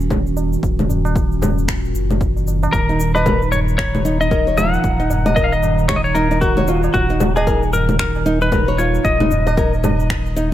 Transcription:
Already playing: sub bass D#1, ambient pad A#2 D#3 C#4 F#4
0.00 cabasa
0.10 kick, low conga, cabasa
0.27 cabasa
0.37 tabla tin, cabasa
0.53 cabasa
0.63 sub bass D#1, kick, cabasa
0.79 low conga, cabasa
0.89 tabla tin, tabla ge, cabasa
1.05 tabla na, cabasa
1.16 kick, cabasa
1.32 cabasa
1.41 tabla na, tabla ge, low conga, cabasa
1.58 cabasa
1.68 finger snap, kick, cabasa
1.85 cabasa
1.95 sub bass F#1, cabasa
2.10 tabla tin, low conga, cabasa
2.21 kick, cabasa
2.36 tabla tin, cabasa
2.47 tabla tin, cabasa
2.63 tabla na, tabla tin, cabasa
2.73 sub bass D#1, ambient pad D#4 A#5, electric slide guitar A#4, kick, cabasa
2.89 nylon-string guitar D#4, cabasa
3.00 tabla tin, cabasa
3.15 electric slide guitar B4, nylon-string guitar D#5, tabla na, cabasa
3.26 nylon-string guitar A#4, kick, low conga, cabasa
3.42 cabasa
3.52 electric slide guitar C#5, tabla ge, cabasa
3.68 cabasa
3.78 electric slide guitar C#5, finger snap, kick, cabasa
3.94 tabla na, tabla tin, low conga, cabasa
4.05 nylon-string guitar D#4, cabasa
4.21 nylon-string guitar D#4, electric slide guitar D#5, cabasa
4.31 nylon-string guitar A#4, kick, cabasa
4.47 nylon-string guitar C#5, cabasa
4.58 nylon-string guitar F3, electric slide guitar F#5, tabla tin, low conga, cabasa
4.74 cabasa
4.84 sub bass D#1, kick, cabasa
5.00 nylon-string guitar D#4, cabasa
5.10 tabla tin, tabla ge, cabasa
5.26 nylon-string guitar D#5, tabla na, low conga, cabasa
5.36 nylon-string guitar A#4, electric slide guitar D#5, kick, cabasa
5.44 electric slide guitar F5
5.52 electric slide guitar D#5, cabasa
5.63 tabla na, tabla ge, cabasa
5.79 cabasa
5.88 electric slide guitar C#5, finger snap, kick, low conga, cabasa
5.96 electric slide guitar D#5
6.04 electric slide guitar C#5, cabasa
6.15 nylon-string guitar D#4, electric slide guitar A#4, cabasa
6.31 nylon-string guitar D#4, tabla tin, cabasa
6.41 electric slide guitar F#4, nylon-string guitar A#4, kick, cabasa
6.57 nylon-string guitar C#5, tabla tin, low conga, cabasa
6.67 nylon-string guitar F4, tabla tin, cabasa
6.83 tabla na, tabla tin, cabasa
6.94 sub bass D#1, electric slide guitar F#4, kick, cabasa
7.09 nylon-string guitar D#4, cabasa
7.20 tabla tin, low conga, cabasa
7.36 electric slide guitar G#4, nylon-string guitar D#5, tabla na, cabasa
7.47 nylon-string guitar A#4, kick, cabasa
7.63 cabasa
7.73 electric slide guitar A#4, tabla ge, cabasa
7.89 low conga, cabasa
7.99 electric slide guitar A#4, finger snap, kick, cabasa
8.15 tabla na, tabla tin, cabasa
8.26 nylon-string guitar D#4, cabasa
8.41 nylon-string guitar D#4, electric slide guitar B4, cabasa
8.52 nylon-string guitar A#4, kick, low conga, cabasa
8.68 nylon-string guitar C#5, cabasa
8.78 nylon-string guitar F4, electric slide guitar C#5, tabla tin, cabasa
8.94 cabasa
9.05 sub bass D#1, electric slide guitar D#5, kick, cabasa
9.20 nylon-string guitar D#4, low conga, cabasa
9.31 tabla tin, tabla ge, cabasa
9.47 nylon-string guitar D#5, tabla na, cabasa
9.57 nylon-string guitar A#4, kick, cabasa
9.73 cabasa
9.84 tabla na, low conga, tabla ge, cabasa
10.00 cabasa
10.10 finger snap, kick, cabasa
10.26 cabasa
10.36 nylon-string guitar D#4, cabasa

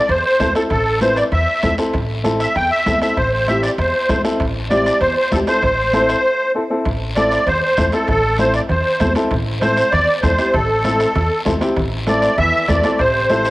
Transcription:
Already playing: accordion D5
0.09 upright bass E2, accordion C5, bombo rim, high conga, high timbale, long guiro
0.25 accordion C5
0.40 upright bass E2, upright piano C4 E4 A4, bombo low, bombo rim, high conga, high timbale, low timbale, short guiro
0.55 upright piano C4 E4 A4, accordion A4, bombo rim, high timbale, short guiro
0.70 upright bass A1, accordion A4, bombo low, bombo rim, high conga, high timbale, long guiro
1.01 upright piano C4 E4 B4, accordion C5, bombo rim, high conga, high timbale, short guiro
1.16 accordion D5, bombo rim, high timbale, short guiro
1.32 upright bass E2, accordion E5, bombo rim, high conga, high timbale, long guiro
1.62 upright bass E2, upright piano C4 E4 A4, bombo low, bombo rim, high conga, high timbale, short guiro
1.78 upright piano C4 E4 A4, bombo rim, high timbale, short guiro
1.93 upright bass A1, bombo low, bombo rim, high conga, high timbale, long guiro
2.23 upright piano C4 E4 A4, bombo rim, high conga, high timbale, short guiro
2.40 accordion E5, bombo rim, high timbale, short guiro
2.56 upright bass E2, accordion G5, bombo rim, high conga, high timbale, long guiro
2.71 accordion E5
2.86 upright bass E2, upright piano C4 E4 A4, bombo low, bombo rim, high conga, high timbale, short guiro
3.01 upright piano C4 E4 A4, accordion E5, bombo rim, high timbale, short guiro
3.17 upright bass A1, accordion C5, bombo low, bombo rim, high timbale, long guiro
3.33 accordion C5
3.48 upright piano C4 E4 G4, accordion E5, bombo rim, high conga, high timbale, short guiro
3.63 accordion D5, bombo rim, high timbale, short guiro
3.78 upright bass E2, accordion C5, bombo rim, high conga, high timbale, long guiro
4.09 upright bass E2, upright piano C4 E4 A4, bombo low, bombo rim, high conga, high timbale, low timbale, short guiro
4.24 upright piano C4 E4 A4, bombo rim, high timbale, short guiro
4.40 upright bass A1, bombo low, bombo rim, high timbale, long guiro
4.70 upright piano C4 E4 G4, accordion D5, bombo rim, high conga, high timbale, short guiro
4.86 bombo rim, high timbale, short guiro
5.01 upright bass E2, accordion C5, bombo rim, high conga, high timbale, long guiro
5.17 accordion C5
5.32 upright bass E2, upright piano C4 E4 G4, accordion A4, bombo low, bombo rim, high conga, high timbale, low timbale, short guiro
5.47 upright piano C4 E4 A4, accordion C5, bombo rim, high timbale, short guiro
5.63 upright bass A1, bombo low, bombo rim, high conga, high timbale, long guiro
5.93 upright piano C4 E4 A4, bombo rim, high conga, high timbale, short guiro
6.09 bombo rim, high timbale, short guiro
6.55 upright piano C4 E4 A4
6.70 upright piano C4 E4 A4
6.85 upright bass A1, bombo low, bombo rim, high conga, high timbale, long guiro
7.16 upright piano C4 E4 A4, accordion D5, bombo rim, high conga, high timbale, short guiro
7.32 bombo rim, high timbale, short guiro
7.47 upright bass E2, accordion C5, bombo rim, high conga, low conga, high timbale, long guiro
7.62 accordion C5
7.77 upright bass E2, upright piano C4 E4 A4, bombo low, bombo rim, high conga, high timbale, short guiro
7.92 upright piano C4 E4 A4, accordion A4, bombo rim, high timbale, short guiro
8.08 upright bass A1, accordion A4, bombo low, bombo rim, high conga, low conga, high timbale, long guiro
8.38 upright piano C4 E4 A4, accordion C5, bombo rim, high conga, high timbale, short guiro
8.54 accordion D5, bombo rim, high timbale, short guiro
8.69 upright bass E2, accordion C5, bombo rim, high conga, low conga, high timbale, long guiro
9.00 upright bass E2, upright piano C4 E4 A4, bombo low, bombo rim, high conga, high timbale, low timbale, short guiro
9.15 upright piano C4 E4 A4, bombo rim, high timbale, short guiro
9.31 upright bass A1, bombo low, bombo rim, high conga, low conga, high timbale, long guiro
9.61 upright piano C4 E4 A4, accordion C5, bombo rim, high conga, high timbale, short guiro
9.77 bombo rim, high timbale, short guiro
9.92 upright bass E2, accordion D5, bombo rim, high conga, low conga, high timbale, long guiro
10.22 upright bass E2, upright piano C4 E4 A4, accordion C5, bombo low, bombo rim, high conga, high timbale, short guiro
10.38 upright piano C4 E4 G4, bombo rim, high timbale, short guiro
10.53 upright bass A1, accordion A4, bombo low, bombo rim, high conga, low conga, high timbale, long guiro
10.84 upright piano C4 E4 A4, bombo rim, high conga, high timbale, short guiro
11.00 bombo rim, high timbale, short guiro
11.15 upright bass E2, bombo rim, high conga, low conga, high timbale, long guiro
11.45 upright bass E2, upright piano C4 E4 A4, bombo low, bombo rim, high conga, low conga, high timbale, low timbale, short guiro
11.61 upright piano C4 E4 G4, bombo rim, high timbale, short guiro
11.76 upright bass A1, bombo low, bombo rim, high conga, low conga, high timbale, long guiro
12.07 trombone A3, upright piano C4 E4 A4, accordion D5, bombo rim, high conga, high timbale, short guiro
12.22 bombo rim, high timbale, short guiro
12.38 upright bass E2, trombone E3, accordion E5, bombo rim, high conga, low conga, high timbale, long guiro
12.68 upright bass E2, trombone A3, upright piano C4 E4 A4, accordion D5, bombo low, bombo rim, high conga, low conga, high timbale, low timbale, short guiro
12.83 upright piano C4 E4 A4, bombo rim, high timbale, short guiro
12.99 upright bass A1, trombone C3, accordion C5, bombo low, bombo rim, high conga, high timbale, long guiro
13.29 upright piano C4 E4 A4, bombo rim, high conga, high timbale, short guiro
13.45 bombo rim, high timbale, short guiro

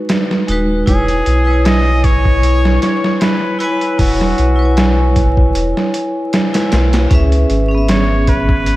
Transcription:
Already playing: vibraphone G#3 D#4 F#4 B4
0.09 snare, closed hi-hat
0.31 snare
0.47 sub bass D#1, vibraphone G#3 D#4 F#4, closed hi-hat
0.52 vibraphone B4
0.86 sub bass E1, vibraphone E4 B4 C#5, muted trumpet G#4, kick, closed hi-hat
0.91 vibraphone G#5
1.08 closed hi-hat
1.26 sub bass B1, closed hi-hat
1.44 vibraphone E4 B4
1.50 vibraphone C#5 G#5
1.65 muted trumpet D#5, snare, closed hi-hat
2.04 muted trumpet C#5, kick, closed hi-hat
2.25 kick
2.43 closed hi-hat
2.65 snare
2.82 muted trumpet C#5, snare, closed hi-hat
3.04 snare
3.21 muted trumpet B4, snare, closed hi-hat
3.59 vibraphone E4 B4 C#5, muted trumpet B4, closed hi-hat
3.64 vibraphone G#5
3.81 closed hi-hat
3.98 sub bass E1, vibraphone E4 B4 C#5, muted trumpet F#4, kick, open hi-hat
4.03 vibraphone G#5
4.21 snare
4.38 sub bass B1, closed hi-hat
4.56 vibraphone E4 B4
4.62 vibraphone C#5 G#5
4.77 snare, closed hi-hat
5.16 kick, closed hi-hat
5.37 kick
5.55 sub bass E1, closed hi-hat
5.77 snare
5.94 closed hi-hat
6.33 snare, closed hi-hat
6.53 vibraphone E4 B4 C#5, snare, closed hi-hat
6.58 vibraphone G#5
6.72 sub bass B1, snare, closed hi-hat
6.93 snare, closed hi-hat
7.10 sub bass C#2, vibraphone C#4 G#4 B4, kick, closed hi-hat
7.15 vibraphone E5
7.32 closed hi-hat
7.50 sub bass G#1, closed hi-hat
7.68 vibraphone C#4 G#4
7.75 vibraphone B3 E5
7.89 muted trumpet C#5, snare, closed hi-hat
8.27 muted trumpet B4, kick, closed hi-hat
8.49 kick
8.66 closed hi-hat

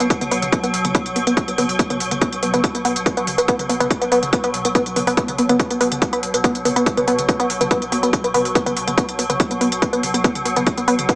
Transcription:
Already playing: synth drone B2 F#3
0.00 sub bass B1, synth arpeggio sound B3, closed hi-hat
0.10 kick, closed hi-hat
0.21 synth arpeggio sound B3, closed hi-hat, mid tom
0.31 sub bass B1, synth arpeggio sound B3, open hi-hat
0.42 sub bass B1, closed hi-hat, mid tom
0.52 synth arpeggio sound B3, kick, closed hi-hat
0.63 synth arpeggio sound B3, closed hi-hat
0.74 sub bass B1, open hi-hat
0.85 sub bass B1, synth arpeggio sound B3, closed hi-hat, mid tom
0.95 synth arpeggio sound B3, kick, closed hi-hat
1.06 closed hi-hat
1.16 sub bass B1, synth arpeggio sound B3, open hi-hat
1.27 sub bass B1, synth arpeggio sound B3, closed hi-hat
1.37 kick, closed hi-hat
1.48 synth arpeggio sound B3, closed hi-hat
1.58 sub bass B1, synth arpeggio sound B3, open hi-hat, mid tom
1.69 sub bass B1, open hi-hat
1.79 synth arpeggio sound B3, kick, closed hi-hat
1.90 synth arpeggio sound B3, closed hi-hat, mid tom
2.00 sub bass B1, open hi-hat
2.11 sub bass B1, synth arpeggio sound B3, closed hi-hat, mid tom
2.21 synth arpeggio sound B3, kick, closed hi-hat
2.33 closed hi-hat
2.43 sub bass B1, synth arpeggio sound B3, open hi-hat
2.54 sub bass B1, synth arpeggio sound B3, closed hi-hat, mid tom
2.64 kick, closed hi-hat
2.75 synth arpeggio sound B3, closed hi-hat
2.85 sub bass B1, synth arpeggio sound B3, open hi-hat
2.96 sub bass B1, closed hi-hat
3.06 synth arpeggio sound B3, kick, closed hi-hat
3.17 synth arpeggio sound B3, closed hi-hat
3.27 sub bass B1, open hi-hat, mid tom
3.38 sub bass B1, synth arpeggio sound B3, closed hi-hat
3.48 synth arpeggio sound B3, kick, closed hi-hat
3.59 closed hi-hat, mid tom
3.69 sub bass B1, synth arpeggio sound B3, open hi-hat
3.80 sub bass B1, synth arpeggio sound B3, closed hi-hat, mid tom
3.90 kick, closed hi-hat
4.01 synth arpeggio sound B3, closed hi-hat
4.12 sub bass B1, synth arpeggio sound B3, open hi-hat
4.23 sub bass B1, closed hi-hat, mid tom
4.33 synth arpeggio sound B3, kick, closed hi-hat
4.44 synth arpeggio sound B3, closed hi-hat
4.54 sub bass B1, open hi-hat
4.65 sub bass B1, synth arpeggio sound B3, closed hi-hat
4.75 synth arpeggio sound B3, kick, closed hi-hat
4.86 closed hi-hat
4.96 sub bass B1, synth arpeggio sound B3, open hi-hat, mid tom
5.07 sub bass B1, synth arpeggio sound B3, open hi-hat
5.17 synth drone B2 F#3, synth arpeggio sound B3, kick, closed hi-hat
5.28 closed hi-hat, mid tom
5.38 sub bass B1, synth arpeggio sound B3, open hi-hat
5.49 sub bass B1, synth arpeggio sound B3, closed hi-hat, mid tom
5.60 kick, closed hi-hat
5.71 synth arpeggio sound B3, closed hi-hat
5.81 sub bass B1, synth arpeggio sound B3, open hi-hat
5.92 sub bass B1, closed hi-hat, mid tom
6.02 synth arpeggio sound B3, kick, closed hi-hat
6.13 synth arpeggio sound B3, closed hi-hat
6.23 sub bass B1, open hi-hat
6.34 sub bass B1, synth arpeggio sound B3, closed hi-hat
6.44 synth arpeggio sound B3, kick, closed hi-hat
6.55 closed hi-hat
6.65 sub bass B1, synth arpeggio sound B3, open hi-hat, mid tom
6.76 sub bass B1, synth arpeggio sound B3, closed hi-hat
6.86 kick, closed hi-hat
6.97 synth arpeggio sound B3, closed hi-hat, mid tom
7.08 sub bass B1, synth arpeggio sound B3, open hi-hat
7.19 sub bass B1, closed hi-hat, mid tom
7.29 synth arpeggio sound B3, kick, closed hi-hat
7.40 synth arpeggio sound B3, closed hi-hat
7.50 sub bass B1, open hi-hat
7.61 sub bass B1, synth arpeggio sound B3, closed hi-hat, mid tom
7.71 synth arpeggio sound B3, kick, closed hi-hat
7.82 closed hi-hat
7.92 sub bass B1, synth arpeggio sound B3, open hi-hat
8.03 sub bass B1, synth arpeggio sound B3, closed hi-hat
8.13 kick, closed hi-hat
8.24 synth arpeggio sound B3, closed hi-hat
8.34 sub bass B1, synth arpeggio sound B3, open hi-hat, mid tom
8.45 sub bass B1, open hi-hat
8.55 synth arpeggio sound B3, kick, closed hi-hat
8.66 synth arpeggio sound B3, closed hi-hat, mid tom
8.77 sub bass B1, open hi-hat
8.87 sub bass B1, synth arpeggio sound B3, closed hi-hat, mid tom
8.97 synth arpeggio sound B3, kick, closed hi-hat
9.09 closed hi-hat
9.19 sub bass B1, synth arpeggio sound B3, open hi-hat
9.30 sub bass B1, synth arpeggio sound B3, closed hi-hat, mid tom
9.40 kick, closed hi-hat
9.51 synth arpeggio sound B3, closed hi-hat
9.61 sub bass B1, synth arpeggio sound B3, open hi-hat
9.72 sub bass B1, closed hi-hat
9.82 synth arpeggio sound B3, kick, closed hi-hat
9.93 synth arpeggio sound B3, closed hi-hat
10.03 sub bass B1, open hi-hat, mid tom
10.14 sub bass B1, synth arpeggio sound B3, closed hi-hat
10.24 synth arpeggio sound B3, kick, closed hi-hat
10.35 closed hi-hat, mid tom
10.45 sub bass B1, synth arpeggio sound B3, open hi-hat
10.56 sub bass B1, synth arpeggio sound B3, closed hi-hat, mid tom
10.67 kick, closed hi-hat
10.78 synth arpeggio sound B3, closed hi-hat
10.88 sub bass B1, synth arpeggio sound B3, open hi-hat
10.99 sub bass B1, closed hi-hat, mid tom
11.09 synth arpeggio sound B3, kick, closed hi-hat

